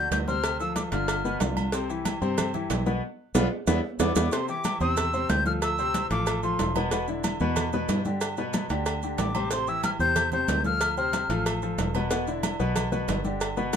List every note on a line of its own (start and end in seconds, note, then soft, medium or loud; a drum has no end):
0.00 0.22 D3 medium
0.00 0.22 D4 medium
0.00 0.22 F#4 medium
0.00 0.11 G6 loud
0.11 0.87 D2 loud
0.11 0.18 G6 medium
0.11 cowbell medium
0.11 high conga medium
0.11 low timbale medium
0.11 low agogo medium
0.11 maracas medium
0.27 0.54 C3 medium
0.27 0.54 C4 medium
0.27 0.54 C5 medium
0.27 0.58 F6 loud
0.27 high conga medium
0.27 maracas soft
0.44 cowbell loud
0.44 low agogo loud
0.44 maracas medium
0.60 0.87 F3 medium
0.60 0.87 F4 medium
0.60 0.87 A4 medium
0.60 0.75 E6 medium
0.60 high conga soft
0.60 maracas soft
0.76 0.82 D6 medium
0.76 cowbell medium
0.76 high conga medium
0.76 low timbale medium
0.76 low agogo medium
0.76 maracas medium
0.92 1.37 G1 loud
0.92 1.19 D3 medium
0.92 1.19 D4 medium
0.92 1.19 F4 medium
0.92 1.37 F6 medium
0.92 cowbell medium
0.92 high conga soft
0.92 low agogo medium
0.92 maracas soft
1.08 cowbell loud
1.08 high conga soft
1.08 low agogo loud
1.08 maracas medium
1.25 1.38 B2 medium
1.25 1.38 B3 medium
1.25 1.38 B4 medium
1.25 high conga soft
1.25 maracas soft
1.40 2.16 C2 medium
1.40 1.67 D3 medium
1.40 1.68 D4 medium
1.40 1.68 F4 medium
1.40 cowbell medium
1.40 high conga medium
1.40 low timbale medium
1.40 low agogo medium
1.40 maracas medium
1.57 high conga medium
1.57 low agogo loud
1.57 maracas soft
1.72 1.86 C3 medium
1.72 1.86 C4 medium
1.72 1.87 C5 medium
1.72 cowbell loud
1.72 low agogo medium
1.72 maracas medium
1.89 2.16 E3 medium
1.89 2.16 E4 medium
1.89 2.16 G4 medium
1.89 high conga soft
1.89 maracas soft
2.05 cowbell medium
2.05 high conga loud
2.05 low timbale medium
2.05 low agogo loud
2.05 maracas medium
2.22 2.67 G2 loud
2.22 2.48 C3 loud
2.22 2.48 C4 loud
2.22 2.49 C5 medium
2.22 high conga soft
2.22 maracas soft
2.38 cowbell loud
2.38 high conga soft
2.38 low conga medium
2.38 low agogo loud
2.38 maracas medium
2.54 2.81 E3 medium
2.54 2.81 E4 medium
2.54 2.81 G4 medium
2.54 high conga soft
2.54 low conga medium
2.54 maracas soft
2.70 3.00 B1 medium
2.70 cowbell medium
2.70 high conga medium
2.70 low timbale medium
2.70 low agogo medium
2.70 maracas medium
2.86 3.00 B2 medium
2.86 3.00 B3 medium
2.86 3.00 B4 medium
2.86 high conga medium
2.86 maracas soft
3.35 3.47 B1 loud
3.35 3.45 B3 loud
3.35 3.45 D4 loud
3.35 3.45 F4 loud
3.35 cowbell loud
3.35 high conga loud
3.35 high timbale loud
3.35 maracas loud
3.67 3.79 E2 loud
3.67 3.78 B3 loud
3.67 3.78 D4 loud
3.67 3.78 E4 loud
3.67 cowbell medium
3.67 high conga medium
3.67 high timbale loud
3.67 maracas loud
3.99 4.12 E2 loud
3.99 4.10 B3 loud
3.99 4.10 D4 loud
3.99 4.10 E4 loud
3.99 4.34 D6 medium
3.99 cowbell loud
3.99 high conga medium
3.99 high timbale loud
3.99 maracas loud
4.16 4.28 E2 medium
4.16 4.26 B3 medium
4.16 4.26 D4 medium
4.16 4.26 E4 medium
4.16 cowbell loud
4.16 high conga loud
4.16 high timbale medium
4.16 maracas loud
4.32 4.45 C3 medium
4.32 4.46 C4 medium
4.32 4.46 C5 medium
4.32 4.49 C6 medium
4.32 cowbell loud
4.32 low agogo medium
4.32 maracas medium
4.48 4.75 E3 medium
4.48 4.75 E4 medium
4.48 4.75 G4 medium
4.48 4.79 D6 loud
4.48 high conga soft
4.48 maracas soft
4.64 cowbell medium
4.64 high conga loud
4.64 low timbale medium
4.64 low agogo loud
4.64 maracas medium
4.80 5.26 E2 loud
4.80 5.07 C3 medium
4.80 5.08 C4 loud
4.80 5.08 C5 medium
4.80 5.31 E6 loud
4.80 high conga soft
4.80 maracas soft
4.97 cowbell loud
4.97 high conga soft
4.97 low conga medium
4.97 low agogo loud
4.97 maracas medium
5.13 5.40 C3 medium
5.13 5.40 C4 medium
5.13 5.40 C5 medium
5.13 high conga soft
5.13 maracas soft
5.29 6.05 D2 medium
5.29 5.46 G6 loud
5.29 cowbell medium
5.29 high conga medium
5.29 low timbale medium
5.29 low agogo medium
5.29 maracas medium
5.46 5.72 F3 medium
5.46 5.73 F4 medium
5.46 5.73 A4 medium
5.46 5.52 F6 loud
5.46 high conga medium
5.46 maracas soft
5.62 6.08 E6 loud
5.62 cowbell loud
5.62 low agogo loud
5.62 maracas medium
5.78 6.05 C3 medium
5.78 6.05 C4 medium
5.78 6.05 C5 medium
5.78 high conga soft
5.78 maracas soft
5.94 cowbell medium
5.94 high conga medium
5.94 low timbale medium
5.94 low agogo medium
5.94 maracas medium
6.11 6.56 A1 loud
6.11 6.37 F3 medium
6.11 6.38 F4 medium
6.11 6.38 A4 medium
6.11 6.41 D6 medium
6.11 cowbell medium
6.11 high conga soft
6.11 low agogo medium
6.11 maracas soft
6.26 cowbell loud
6.26 high conga soft
6.26 low agogo loud
6.26 maracas medium
6.43 6.70 F3 medium
6.43 6.70 F4 medium
6.43 6.70 A4 medium
6.43 6.74 C6 medium
6.43 high conga soft
6.43 maracas soft
6.59 7.35 E1 medium
6.59 cowbell medium
6.59 high conga medium
6.59 low timbale medium
6.59 low agogo medium
6.59 maracas medium
6.75 6.89 B2 medium
6.75 6.89 B3 medium
6.75 6.89 B4 medium
6.75 high conga medium
6.75 low agogo loud
6.75 maracas soft
6.91 7.05 B2 medium
6.91 7.05 B3 medium
6.91 7.05 B4 medium
6.91 cowbell loud
6.91 low agogo medium
6.91 maracas medium
7.08 7.35 D3 medium
7.08 7.35 D4 medium
7.08 7.35 E4 medium
7.08 high conga soft
7.08 maracas soft
7.24 cowbell medium
7.24 high conga loud
7.24 low timbale medium
7.24 low agogo loud
7.24 maracas medium
7.40 7.86 E2 medium
7.40 7.67 B2 loud
7.40 7.67 B3 medium
7.40 7.68 B4 loud
7.40 maracas soft
7.56 cowbell loud
7.56 high conga soft
7.56 low conga medium
7.56 low agogo loud
7.56 maracas medium
7.73 8.00 B2 medium
7.73 8.00 B3 medium
7.73 8.00 B4 medium
7.73 high conga soft
7.73 low conga medium
7.73 maracas soft
7.89 8.64 G2 medium
7.89 cowbell medium
7.89 high conga medium
7.89 low timbale medium
7.89 low agogo medium
7.89 maracas medium
8.05 8.32 D3 medium
8.05 8.32 D4 medium
8.05 8.32 G4 medium
8.05 high conga medium
8.05 maracas soft
8.21 cowbell loud
8.21 high conga soft
8.21 low agogo loud
8.21 maracas medium
8.37 8.64 B2 medium
8.37 8.64 B3 medium
8.37 8.65 B4 medium
8.37 high conga soft
8.37 maracas soft
8.53 cowbell medium
8.53 high conga loud
8.53 low timbale medium
8.53 low agogo medium
8.53 maracas medium
8.70 9.15 D2 medium
8.70 8.97 D3 medium
8.70 8.97 D4 medium
8.70 8.97 G4 medium
8.70 cowbell medium
8.70 high conga soft
8.70 low agogo medium
8.70 maracas soft
8.86 cowbell loud
8.86 high conga soft
8.86 low agogo loud
8.86 maracas medium
9.03 9.29 D3 medium
9.03 9.30 D4 medium
9.03 9.30 G4 medium
9.03 high conga soft
9.03 maracas soft
9.18 9.94 A1 medium
9.18 9.49 D6 medium
9.18 cowbell medium
9.18 high conga medium
9.18 low timbale medium
9.18 low agogo medium
9.18 maracas medium
9.35 9.48 C3 medium
9.35 9.48 C4 medium
9.35 9.49 C5 medium
9.35 high conga medium
9.35 low agogo loud
9.35 maracas soft
9.51 9.65 C3 medium
9.51 9.65 C4 medium
9.51 9.65 C5 medium
9.51 9.70 C6 loud
9.51 cowbell loud
9.51 low agogo medium
9.51 maracas medium
9.67 9.94 E3 medium
9.67 9.94 E4 medium
9.67 9.94 G4 medium
9.67 9.84 E6 loud
9.67 high conga soft
9.67 maracas soft
9.83 9.91 F6 loud
9.83 cowbell medium
9.83 high conga medium
9.83 low timbale medium
9.83 low agogo loud
9.83 maracas medium
9.99 10.45 E2 loud
9.99 10.26 C3 loud
9.99 10.27 C4 medium
9.99 10.27 C5 medium
9.99 10.30 G6 loud
9.99 high conga soft
9.99 maracas soft
10.16 cowbell loud
10.16 high conga soft
10.16 low conga medium
10.16 low agogo loud
10.16 maracas medium
10.32 10.59 C3 medium
10.32 10.59 C4 medium
10.32 10.60 C5 medium
10.32 10.63 G6 loud
10.32 high conga soft
10.32 low conga medium
10.32 maracas soft
10.48 11.24 D2 medium
10.48 cowbell medium
10.48 high conga medium
10.48 low timbale medium
10.48 low agogo medium
10.48 maracas medium
10.64 10.91 F3 medium
10.64 10.92 F4 medium
10.64 10.92 A4 medium
10.64 10.95 F6 loud
10.64 high conga medium
10.64 maracas soft
10.81 cowbell loud
10.81 low agogo loud
10.81 maracas medium
10.97 11.24 C3 medium
10.97 11.24 C4 medium
10.97 11.24 C5 medium
10.97 11.43 F6 loud
10.97 high conga soft
10.97 maracas soft
11.13 cowbell medium
11.13 high conga medium
11.13 low timbale medium
11.13 low agogo medium
11.13 maracas medium
11.29 11.75 A1 loud
11.29 11.56 F3 medium
11.29 11.57 F4 medium
11.29 11.57 A4 medium
11.29 cowbell medium
11.29 low agogo medium
11.29 maracas soft
11.46 cowbell loud
11.46 high conga soft
11.46 low agogo loud
11.46 maracas medium
11.62 11.89 F3 medium
11.62 11.89 F4 medium
11.62 11.89 A4 medium
11.62 high conga soft
11.62 maracas soft
11.78 12.54 E1 loud
11.78 cowbell medium
11.78 high conga medium
11.78 low timbale medium
11.78 low agogo medium
11.78 maracas medium
11.95 12.08 B2 medium
11.95 12.08 B3 medium
11.95 12.09 B4 medium
11.95 high conga medium
11.95 low agogo loud
11.95 maracas soft
12.11 12.24 B2 medium
12.11 12.24 B3 medium
12.11 12.24 B4 medium
12.11 cowbell loud
12.11 low agogo medium
12.11 maracas medium
12.27 12.54 D3 medium
12.27 12.54 D4 medium
12.27 12.54 E4 medium
12.27 high conga soft
12.27 maracas soft
12.43 cowbell medium
12.43 high conga loud
12.43 low timbale medium
12.43 low agogo loud
12.43 maracas medium
12.60 13.05 B1 loud
12.60 12.86 B2 loud
12.60 12.86 B3 medium
12.60 12.86 B4 medium
12.60 maracas soft
12.76 cowbell loud
12.76 high conga soft
12.76 low conga medium
12.76 low agogo loud
12.76 maracas medium
12.92 13.18 B2 medium
12.92 13.19 B3 medium
12.92 13.19 B4 medium
12.92 high conga soft
12.92 low conga medium
12.92 maracas soft
13.08 13.76 G1 loud
13.08 cowbell medium
13.08 high conga medium
13.08 low timbale medium
13.08 low agogo medium
13.08 maracas medium
13.25 13.51 D3 medium
13.25 13.51 D4 medium
13.25 13.52 G4 medium
13.25 high conga medium
13.25 maracas soft
13.41 cowbell loud
13.41 high conga soft
13.41 low agogo loud
13.41 maracas medium
13.57 13.76 B2 medium
13.57 13.76 B3 medium
13.57 13.76 B4 medium
13.57 high conga soft
13.57 maracas soft
13.73 cowbell medium
13.73 high bongo medium
13.73 maracas medium